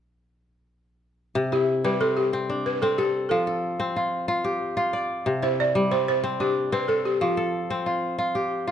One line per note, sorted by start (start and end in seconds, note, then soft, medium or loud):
1.35 3.36 C3 medium
1.52 3.09 E4 medium
1.52 1.86 G4 medium
1.84 3.36 G3 medium
1.84 2.01 B4 medium
2.01 2.33 C4 medium
2.01 2.08 A4 medium
2.17 2.67 G4 medium
2.33 2.82 C4 medium
2.50 4.17 D4 medium
2.66 2.73 B4 medium
2.82 3.79 C4 medium
2.82 2.97 A4 medium
2.98 3.32 G4 medium
2.98 3.47 A4 medium
3.29 5.31 F3 medium
3.29 3.91 A4 medium
3.47 4.79 A4 medium
3.80 5.60 C4 medium
3.96 4.28 F4 medium
4.28 4.76 F4 medium
4.44 5.86 G4 medium
4.77 5.48 F4 medium
4.93 6.04 D5 medium
5.26 7.26 C3 medium
5.42 6.99 E4 medium
5.42 5.50 C5 medium
5.60 5.93 D5 medium
5.75 7.26 G3 medium
5.91 6.23 C4 medium
5.91 6.07 C5 medium
6.08 6.41 C5 medium
6.24 6.72 C4 medium
6.40 8.08 D4 medium
6.40 6.74 G4 medium
6.72 7.70 C4 medium
6.72 6.89 B4 medium
6.88 7.05 A4 medium
6.88 7.37 A4 medium
7.05 7.22 G4 medium
7.21 8.71 F3 medium
7.21 7.82 F4 medium
7.37 8.69 A4 medium
7.70 8.71 C4 medium
7.86 8.18 F4 medium
8.19 8.67 F4 medium
8.35 8.71 G4 medium
8.67 8.71 F4 medium